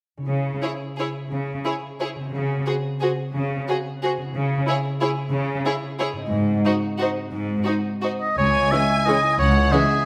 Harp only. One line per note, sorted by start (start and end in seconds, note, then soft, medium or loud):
0.17 2.14 C#3 soft
0.17 2.33 C#4 soft
0.22 2.31 E4 soft
0.22 2.28 G#4 soft
2.16 4.16 C#3 soft
2.20 4.29 C4 soft
2.25 4.31 F#4 soft
2.29 4.29 G#4 soft
4.17 6.24 C#3 soft
4.22 6.26 C#4 soft
4.26 6.28 E4 soft
4.31 8.21 G#4 soft
6.13 8.30 G#2 soft
6.17 8.32 C4 soft
6.22 8.34 D#4 soft
6.26 8.37 F#4 soft
8.39 9.39 C#3 soft
8.55 9.55 G#3 soft
8.72 9.73 C#4 soft
8.90 9.22 E4 soft
9.24 9.89 E4 soft
9.40 10.05 C#3 soft
9.56 10.05 G#3 soft
9.74 10.05 C#4 soft
9.91 10.05 E4 soft